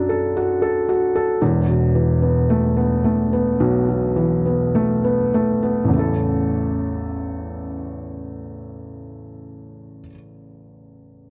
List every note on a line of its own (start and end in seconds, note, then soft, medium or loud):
0.00 1.37 B1 medium
0.00 1.38 F#2 medium
0.00 1.38 B2 medium
0.00 1.43 F#3 medium
0.00 1.38 D4 medium
0.00 0.37 F#4 medium
0.00 0.09 A4 medium
0.09 0.61 A4 medium
0.37 0.87 F#4 medium
0.62 1.14 A4 medium
0.89 1.40 F#4 medium
1.16 1.41 A4 medium
1.42 5.89 E1 medium
1.42 5.86 E2 medium
1.68 3.59 B2 soft
1.95 4.13 E3 medium
2.22 2.75 B3 soft
2.50 3.03 A3 medium
2.77 3.31 B3 medium
3.04 4.73 A3 medium
3.33 4.44 B3 medium
3.60 5.89 B1 medium
3.60 3.87 B2 medium
3.89 5.89 B2 medium
4.16 5.88 E3 medium
4.46 5.03 B3 soft
4.75 5.33 A3 medium
5.04 5.61 B3 medium
5.34 5.92 A3 medium
5.63 5.92 B3 medium
5.85 9.99 A1 medium
5.85 10.02 E2 medium
5.91 10.04 C#3 medium
5.91 10.07 A3 medium
5.96 10.10 E4 soft
5.96 10.13 A4 medium